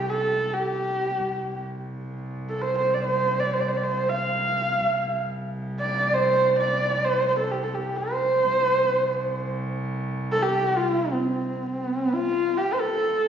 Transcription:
Already playing: C2 G4
0.10 A4
0.55 G4
1.26 C2
2.49 A4
2.62 C5
2.78 C5
2.94 D5
3.06 C5
3.40 D5
3.54 C5
3.60 D5
3.68 C5
3.77 D5
3.84 C5
4.09 F5
4.88 C2
5.80 D5
6.14 C5
6.60 D5
7.05 C5
7.28 C5
7.39 A4
7.52 G4
7.64 A4
7.75 G4
7.97 C5
8.52 C2
10.32 A4
10.43 G4
10.77 F4
11.12 C4
11.70 C4
12.13 F4
12.58 G4
12.74 C5
12.81 A4

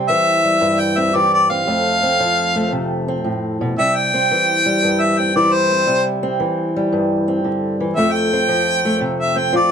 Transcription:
Already playing: G3 C4
0.08 E3 E5
0.44 G3
0.61 G2
0.80 G5
0.97 C4 E5
1.14 E3 G4 D5
1.34 D5
1.49 C4 F5
1.67 F2 A3
2.03 C4
2.20 F3
2.56 A3
2.72 C3
3.08 C4
3.24 A2
3.61 B2
3.78 C3 G3 E5
3.95 G5
4.14 C4
4.31 E3
4.66 G3
4.83 G2
5.00 E5
5.18 C4 G5
5.36 E3 E4 D5
5.52 C5
5.71 C4
5.87 C3 G3
6.23 C4
6.40 E3
6.76 G3
6.92 G2
7.28 C4
7.44 D3
7.80 E3
7.96 F2 A3 E5
8.11 G5
8.33 C4
8.48 F3
8.85 A3
9.01 C3
9.20 E5
9.36 C4 G5
9.53 F3 F4 D5

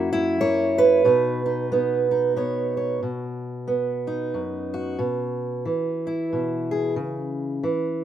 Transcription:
Already playing: F#2 A#3 E4 F#4
0.13 E4
0.41 A#3 C#5
0.78 B4
1.05 B2 D#4
1.46 D#4
1.72 B3 D#4
2.11 D#4
2.36 B3 C#5
2.77 C#5
3.03 B2
3.68 B3
4.07 D#4
4.34 F#2
4.74 F#4
4.99 B2
5.65 E3
6.07 E4
6.33 B2
6.71 G#4
6.96 C#3
7.63 E3

